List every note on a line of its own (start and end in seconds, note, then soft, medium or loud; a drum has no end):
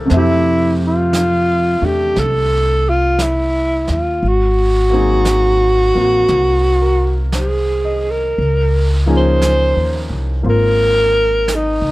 0.00 0.10 C4 soft
0.00 0.10 D4 soft
0.00 0.10 G4 soft
0.00 0.29 A4 soft
0.00 0.10 A#4 soft
0.00 0.11 C5 soft
0.05 4.19 C3 soft
0.05 1.80 A3 soft
0.10 1.78 F2 medium
0.10 4.21 C4 soft
0.10 4.23 E5 soft
0.10 brush sweep soft
0.10 snare soft
0.17 0.78 E4 medium
0.17 4.25 G4 soft
0.87 1.87 F4 medium
1.13 brush sweep soft
1.13 snare soft
1.13 hi-hat pedal soft
1.82 2.13 E2 soft
1.82 4.22 A3 soft
1.82 4.22 D4 soft
1.82 2.21 G4 medium
2.16 3.84 C2 medium
2.16 2.91 A4 medium
2.16 brush sweep soft
2.16 snare soft
2.90 3.24 F4 medium
3.19 3.89 E4 medium
3.19 brush sweep soft
3.19 snare soft
3.19 hi-hat pedal soft
3.87 4.20 D#2 soft
3.87 snare soft
3.92 4.30 F4 medium
4.22 5.91 G#1 medium
4.22 brush sweep soft
4.28 7.22 F#4 medium
4.90 8.37 F#3 soft
4.90 5.93 A#3 soft
4.90 5.94 C4 soft
4.90 8.39 D#4 soft
4.95 8.39 G#4 soft
5.25 brush sweep soft
5.25 snare soft
5.25 hi-hat pedal soft
5.95 6.27 A1 soft
5.95 8.37 A#3 soft
5.95 8.38 C4 soft
5.95 8.39 F#4 soft
6.28 8.34 C2 medium
6.28 brush sweep soft
6.28 snare soft
6.82 7.56 A#4 soft
7.32 8.17 C5 soft
7.32 brush sweep soft
7.32 snare soft
7.32 hi-hat pedal soft
7.39 8.12 G#4 medium
7.85 8.59 D#5 soft
8.11 9.11 A#4 medium
8.38 9.72 C#2 medium
8.38 brush sweep soft
9.06 11.91 F3 soft
9.06 10.42 A#3 soft
9.06 11.91 C#4 soft
9.06 11.91 D#4 soft
9.06 11.91 G#4 soft
9.16 10.11 C5 medium
9.42 brush sweep soft
9.42 snare soft
9.42 hi-hat pedal soft
9.76 10.08 D#2 soft
10.10 10.42 C2 soft
10.43 11.78 G#1 medium
10.43 11.91 A#3 soft
10.43 11.91 C4 soft
10.43 11.91 F4 soft
10.43 brush sweep soft
10.50 11.56 A#4 medium
11.48 brush sweep soft
11.48 snare soft
11.48 hi-hat pedal soft
11.55 11.91 D#4 medium
11.82 11.91 C#2 soft